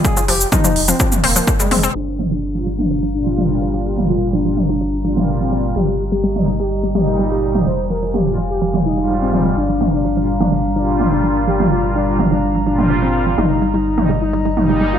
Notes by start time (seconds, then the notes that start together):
0.05 G#4, kick, shaker
0.17 F3, shaker
0.28 F1 F3 G4, open hi-hat
0.41 shaker
0.52 F3 D#4, kick, mid tom, shaker
0.64 F3, shaker
0.76 F1, open hi-hat
0.88 F3 C4, shaker
1.00 F3, kick, shaker
1.12 mid tom, shaker
1.24 D#1 A#3 C4, open hi-hat
1.36 F3, shaker
1.47 kick, shaker
1.60 G3 G#3, shaker
1.71 F1 C4, mid tom, open hi-hat
1.83 C4, shaker
1.95 G1 F3 G3 D4 F5 A#5
2.19 F3, mid tom
2.31 F3 D4
2.55 A#2 F3 G3 F4
2.67 F3
2.79 D4, mid tom
2.90 F3
3.03 F3
3.14 A#2 G3 D4 F4
3.26 F3
3.38 F3, mid tom
3.50 D4
3.62 F3
3.74 F3
3.86 G4
3.98 F3, mid tom
4.09 F3 F4
4.33 F3 D4
4.45 A#2 F3 G3 F4
4.57 mid tom
4.69 F3 D4
4.81 F3
5.05 A#2 F3 G3 D4 F4
5.17 F3, mid tom
5.41 F3 C4
5.52 F3
5.76 G1 G3 G4 D#5, mid tom
5.88 G3
6.12 G3 G4
6.24 G3
6.36 A#2 G3 D#4, mid tom
6.47 G3
6.60 G3 G4
6.84 G3
6.95 A#2 G3 D#4 G4, mid tom
7.19 G3
7.31 G3 G4
7.55 G3, mid tom
7.66 F1 F3 C5 F5 G#5
7.90 F3 A#4
8.03 F3
8.14 G4, mid tom
8.26 G#2 F3 G3 F4
8.38 F3
8.50 G4
8.62 F3
8.74 F3, mid tom
8.86 D#4
8.98 G#2 F3 G3 F4
9.09 F3
9.22 C4
9.33 F3, mid tom
9.45 F3
9.57 G1 G3 D4 A#5
9.69 F3
9.81 F3, mid tom
9.93 D4
10.05 F3
10.17 A#2 F3 G3 F4
10.41 F3 D4, mid tom
10.52 F3
10.76 A#2 F3 G3 D4 F4
10.88 F3
11.00 mid tom
11.12 F3 D4
11.24 F3
11.47 F3 G4
11.60 F3, mid tom
11.71 F4
11.84 F3
11.95 F3 D4
12.07 A#2 G3 F4
12.19 F3, mid tom
12.31 F3 D4
12.55 F3
12.66 A#2 F3 G3 D4 F4
12.79 mid tom
12.90 F3
13.02 F3 C4
13.26 F3
13.38 G1 G3 D#4 D#5, mid tom
13.62 G3
13.74 G3 D#4
13.98 A#2 G3 D#4, mid tom
14.09 G3
14.22 D#4
14.33 G3
14.45 G3
14.57 A#2 G3 D#4, mid tom
14.69 G3
14.81 G3
14.93 F4